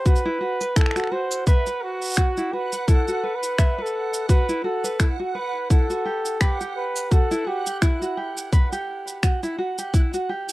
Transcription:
0.00 10.52 F#5 medium
0.06 0.24 F#4 medium
0.06 0.78 B4 loud
0.06 kick loud
0.06 shaker medium
0.16 shaker soft
0.25 0.39 E4 medium
0.41 0.59 F#4 medium
0.61 0.75 B4 medium
0.61 shaker medium
0.76 0.94 E4 medium
0.76 1.13 A4 medium
0.76 finger snap medium
0.76 kick loud
0.76 shaker medium
0.81 finger snap medium
0.86 finger snap medium
0.91 finger snap soft
0.96 1.10 F#4 medium
0.96 finger snap soft
0.96 shaker soft
1.00 finger snap soft
1.04 finger snap soft
1.07 finger snap soft
1.12 1.45 F#4 medium
1.12 1.47 C5 loud
1.31 shaker medium
1.47 1.84 B4 loud
1.47 1.65 E5 loud
1.47 kick loud
1.47 shaker soft
1.66 2.16 B4 medium
1.66 shaker soft
1.83 2.54 F#4 loud
2.02 shaker soft
2.04 shaker soft
2.06 shaker soft
2.08 shaker soft
2.09 shaker soft
2.11 shaker medium
2.13 shaker medium
2.15 finger snap medium
2.15 shaker medium
2.17 2.35 F#4 medium
2.17 kick loud
2.17 shaker medium
2.37 2.51 E4 medium
2.37 shaker soft
2.53 2.71 F#4 medium
2.53 2.90 B4 medium
2.72 2.87 B4 medium
2.72 shaker medium
2.88 3.06 E4 medium
2.88 3.37 A4 medium
2.88 kick loud
2.88 shaker medium
3.08 3.22 F#4 medium
3.08 shaker soft
3.24 3.57 B4 medium
3.35 3.84 B4 medium
3.43 shaker medium
3.58 3.76 E5 medium
3.58 finger snap medium
3.58 kick loud
3.58 shaker medium
3.78 4.28 A4 medium
3.78 4.28 B4 medium
3.86 shaker soft
4.14 shaker medium
4.29 4.47 F#4 medium
4.29 4.62 B4 loud
4.29 kick loud
4.29 shaker medium
4.49 4.63 E4 medium
4.49 shaker soft
4.64 4.82 F#4 medium
4.64 5.06 A4 medium
4.84 4.98 B4 medium
4.84 shaker medium
5.00 5.17 E4 medium
5.00 finger snap loud
5.00 kick medium
5.00 shaker medium
5.19 5.33 F#4 medium
5.35 5.69 B4 medium
5.35 5.68 B4 medium
5.70 5.88 E4 medium
5.70 6.43 A4 medium
5.70 kick loud
5.70 shaker soft
5.90 6.04 F#4 medium
5.90 shaker soft
6.05 6.39 G4 medium
6.25 shaker medium
6.41 6.75 G4 medium
6.41 6.59 B4 medium
6.41 finger snap medium
6.41 kick medium
6.41 shaker medium
6.61 7.10 G4 medium
6.61 shaker soft
6.76 7.13 B4 medium
6.96 shaker medium
7.11 7.29 F#4 medium
7.11 7.49 A4 medium
7.11 kick medium
7.11 shaker soft
7.31 7.45 E4 medium
7.31 shaker soft
7.47 7.65 F#4 medium
7.47 7.84 G4 medium
7.66 7.81 G4 medium
7.66 shaker medium
7.82 8.00 E4 medium
7.82 8.37 E4 medium
7.82 finger snap medium
7.82 kick loud
7.82 shaker medium
8.02 8.16 F#4 medium
8.02 shaker soft
8.17 8.51 G4 medium
8.37 shaker medium
8.53 8.70 B4 medium
8.53 kick medium
8.53 shaker medium
8.72 9.22 G4 medium
8.72 shaker soft
9.08 shaker medium
9.23 9.41 F#4 medium
9.23 finger snap medium
9.23 kick medium
9.23 shaker medium
9.43 9.57 E4 loud
9.43 shaker soft
9.58 9.76 F#4 medium
9.78 9.92 G4 medium
9.78 shaker medium
9.94 10.12 E4 medium
9.94 kick medium
9.94 shaker medium
10.14 10.28 F#4 medium
10.14 shaker soft
10.29 10.52 G4 medium
10.49 shaker medium

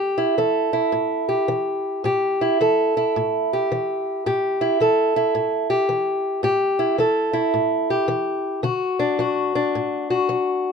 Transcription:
0.00 0.34 A2 medium
0.00 0.38 G4 medium
0.18 0.73 E4 medium
0.38 0.89 E3 medium
0.38 1.28 A4 soft
0.73 2.41 E4 soft
0.92 1.44 A2 medium
1.29 2.05 G4 medium
1.48 2.00 E3 medium
2.04 2.55 A2 medium
2.04 2.61 G4 medium
2.41 2.97 E4 medium
2.61 3.11 E3 medium
2.61 3.53 A4 medium
2.97 4.61 E4 medium
3.16 3.67 A2 medium
3.53 4.26 G4 medium
3.72 4.22 E3 medium
4.26 4.77 A2 medium
4.26 4.81 G4 medium
4.61 5.16 E4 medium
4.80 5.31 E3 medium
4.80 5.70 A4 medium
5.16 6.44 E4 medium
5.35 5.86 A2 medium
5.70 6.43 G4 medium
5.89 6.41 E3 medium
6.43 6.95 A2 medium
6.43 6.99 G4 medium
6.79 7.32 E4 medium
6.98 7.50 E3 medium
6.98 7.90 A4 medium
7.33 8.62 E4 medium
7.54 8.06 A2 medium
7.90 8.63 G4 medium
8.08 8.60 E3 medium
8.63 9.15 D3 medium
8.63 9.19 F#4 medium
8.99 9.54 D4 medium
9.19 9.71 F#3 medium
9.19 10.09 F#4 medium
9.55 10.72 D4 medium
9.75 10.27 A2 medium
10.10 10.72 F#4 medium
10.29 10.72 F#3 medium

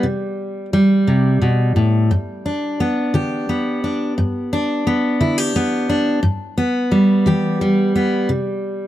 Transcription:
0.00 0.65 C3 medium
0.00 0.73 G3 medium
0.00 1.79 G4 medium
0.73 2.80 G3 medium
1.07 1.41 C3 medium
1.42 1.75 B2 medium
1.76 2.10 A2 medium
2.11 2.72 G2 medium
2.46 3.82 D4 medium
2.80 3.49 B3 medium
3.14 3.75 D3 medium
3.14 5.20 G4 medium
3.49 4.86 B3 medium
3.84 4.13 D4 medium
4.18 4.79 G2 medium
4.53 5.88 D4 medium
4.87 5.54 B3 medium
5.21 5.82 D3 medium
5.21 5.38 E4 medium
5.38 6.23 G4 medium
5.56 6.19 B3 medium
5.89 6.19 D4 medium
6.23 6.84 G2 medium
6.58 7.94 B3 medium
6.91 7.61 G3 medium
7.26 7.87 E3 medium
7.26 8.87 G4 medium
7.61 8.87 G3 medium
7.96 8.29 B3 medium
8.29 8.87 C3 medium

